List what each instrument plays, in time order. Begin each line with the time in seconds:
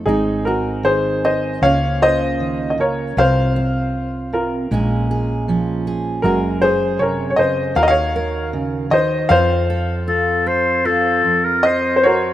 0.06 fretless electric bass G#1, steel-string acoustic guitar G#2 C4 D#4, upright piano D#4 G#4
0.45 upright piano F#4 A#4, steel-string acoustic guitar G#4
0.83 steel-string acoustic guitar D#3 D#4, upright piano G#4 C5
1.24 steel-string acoustic guitar G#4, upright piano C5 D#5
1.62 fretless electric bass C#2, steel-string acoustic guitar C#3 A#3 C#4 F4, upright piano C#5 F5
2.02 steel-string acoustic guitar F4, upright piano C5 D#5
2.40 steel-string acoustic guitar D#3
2.70 upright piano D#5
2.78 steel-string acoustic guitar C#3, upright piano A#4 C#5
3.17 fretless electric bass C2, steel-string acoustic guitar C3 C4 F4, upright piano C5 F5
3.56 steel-string acoustic guitar F4
4.33 steel-string acoustic guitar C3, upright piano F4 A#4
4.71 fretless electric bass A#1, steel-string acoustic guitar A#2 G#3 C#4 G#4
5.11 steel-string acoustic guitar G#4
5.48 steel-string acoustic guitar F3 C#4
5.87 steel-string acoustic guitar G#4
6.22 fretless electric bass F#1, steel-string acoustic guitar F#2 G#3 G#4, upright piano F#4 A#4
6.62 steel-string acoustic guitar G#4, upright piano G#4 C5
6.99 steel-string acoustic guitar C3, upright piano A#4 C#5
7.30 upright piano C#5
7.36 steel-string acoustic guitar C#3, upright piano C5 D#5
7.75 fretless electric bass D#2, steel-string acoustic guitar D#3 F#4 A#4, upright piano A#4 F5
7.83 upright piano D#5
7.88 upright piano C#5 F5
8.16 steel-string acoustic guitar A#4
8.53 steel-string acoustic guitar C#3
8.90 steel-string acoustic guitar D#3, upright piano C5 D#5
9.29 steel-string acoustic guitar F2 C4 F4 A4, fretless electric bass F2, upright piano C5 F5
9.70 steel-string acoustic guitar A4
10.07 steel-string acoustic guitar F4, clarinet A4
10.46 steel-string acoustic guitar A4, clarinet C5
10.85 steel-string acoustic guitar F4, clarinet A4
11.24 steel-string acoustic guitar F2
11.45 clarinet A#4
11.63 clarinet C5, upright piano D#5
11.96 upright piano C5
12.03 upright piano F#4 A#4 C#5